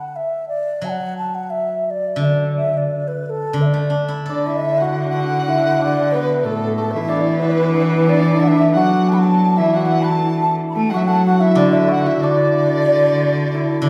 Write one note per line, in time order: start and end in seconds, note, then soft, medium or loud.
0.00 0.13 D3 medium
0.00 0.13 A4 soft
0.00 0.17 F#5 medium
0.16 0.48 E5 medium
0.48 0.86 D5 medium
0.82 2.87 F#3 medium
0.82 0.90 A5 medium
0.89 1.17 F#5 medium
1.17 1.36 A5 medium
1.35 1.52 F#5 medium
1.50 1.87 E5 medium
1.87 2.20 D5 medium
1.87 1.92 E5 medium
2.16 3.52 D3 medium
2.22 2.52 D5 medium
2.22 2.26 E5 medium
2.57 2.74 E5 medium
2.74 3.09 D5 medium
2.74 2.78 E5 medium
3.08 3.26 B4 medium
3.26 3.63 A4 medium
3.26 3.31 B4 medium
3.53 5.61 D3 medium
3.61 3.67 E5 medium
3.66 4.02 D5 medium
3.74 5.13 A3 soft
3.90 5.29 D4 soft
4.08 5.46 E4 soft
4.26 6.47 D3 medium
4.26 5.81 D4 medium
4.26 5.62 A4 soft
4.26 4.48 D5 medium
4.33 4.52 D5 medium
4.47 5.47 E4 medium
4.47 4.79 E5 medium
4.47 4.86 E5 medium
4.78 5.13 F#4 medium
4.78 5.09 F#5 medium
4.84 5.16 F#5 medium
5.10 5.39 F#4 medium
5.10 6.13 F#5 medium
5.20 5.51 F#5 medium
5.39 8.63 F#4 medium
5.48 6.96 E4 medium
5.48 5.81 E5 medium
5.82 7.09 D4 medium
5.82 6.18 D5 medium
6.11 7.41 B3 medium
6.11 6.46 B4 medium
6.17 6.48 B4 medium
6.45 6.96 A2 medium
6.45 6.78 A3 medium
6.45 6.75 A4 medium
6.49 6.78 A4 medium
6.76 11.21 A3 medium
6.76 6.93 A4 medium
6.80 6.94 A4 medium
6.91 8.75 E3 medium
6.91 7.11 E5 medium
6.96 9.57 E4 medium
6.96 7.16 E5 medium
7.09 7.68 D4 medium
7.09 7.41 D5 medium
7.16 7.22 E5 medium
7.21 7.46 D5 medium
7.40 7.73 B3 medium
7.40 7.74 B4 medium
7.48 7.75 B4 medium
7.48 7.52 D5 medium
7.68 8.06 D4 medium
7.73 11.87 B3 medium
7.73 8.05 B4 medium
7.79 7.84 D5 medium
7.83 8.11 B4 loud
8.06 8.14 D4 medium
8.06 8.41 D5 medium
8.06 8.41 D5 loud
8.15 8.22 D4 medium
8.22 8.30 D4 medium
8.30 8.36 D4 medium
8.36 8.46 D4 medium
8.36 8.71 E5 medium
8.43 8.55 D4 medium
8.43 8.49 F#5 medium
8.48 8.78 E5 medium
8.56 8.61 D4 medium
8.62 11.55 D4 medium
8.72 9.61 F#3 medium
8.72 9.14 F#5 medium
8.76 9.76 F#4 medium
8.76 9.10 F#5 medium
9.09 9.23 A4 medium
9.09 9.16 A5 medium
9.13 9.25 F#5 medium
9.13 9.21 B5 medium
9.19 9.58 A5 medium
9.23 10.08 A4 medium
9.23 9.42 A5 loud
9.43 9.57 A5 medium
9.57 10.59 E3 medium
9.57 11.40 E4 medium
9.57 9.76 E5 medium
9.57 9.78 E5 medium
9.74 10.93 F#4 medium
9.74 9.82 F#5 medium
9.74 10.03 F#5 medium
9.81 9.87 E5 medium
9.86 10.06 F#5 medium
10.02 10.56 A5 medium
10.02 10.09 B5 medium
10.09 10.42 A4 medium
10.09 10.40 A5 medium
10.09 10.14 B5 medium
10.40 10.75 A4 medium
10.40 10.56 A5 medium
10.69 10.92 A5 medium
10.69 10.75 B5 medium
10.76 10.93 A3 medium
10.76 11.07 A4 medium
10.89 11.58 F#3 medium
10.89 10.98 F#5 medium
10.89 11.09 F#5 medium
10.94 11.26 F#4 medium
10.94 11.06 E5 medium
11.04 13.89 A4 medium
11.04 11.24 F#5 medium
11.04 11.24 A5 medium
11.26 11.88 F#4 medium
11.26 11.41 F#5 loud
11.26 11.43 F#5 medium
11.40 11.71 E4 medium
11.40 11.58 E5 medium
11.40 11.60 E5 medium
11.55 13.50 D3 medium
11.55 12.19 D3 medium
11.55 12.23 D4 medium
11.55 11.75 D5 medium
11.55 11.77 D5 medium
11.72 12.06 E4 medium
11.72 11.93 E5 loud
11.76 11.91 E5 medium
11.88 12.04 F#4 medium
11.88 12.06 F#5 medium
11.88 12.08 F#5 medium
12.05 13.54 E4 medium
12.05 13.89 F#4 medium
12.05 12.23 E5 medium
12.20 13.79 D3 medium
12.20 13.83 D4 medium
12.20 13.83 D5 medium
12.20 13.56 D5 loud
13.54 13.89 E4 medium
13.82 13.89 D3 medium
13.82 13.89 D4 medium
13.82 13.89 D5 medium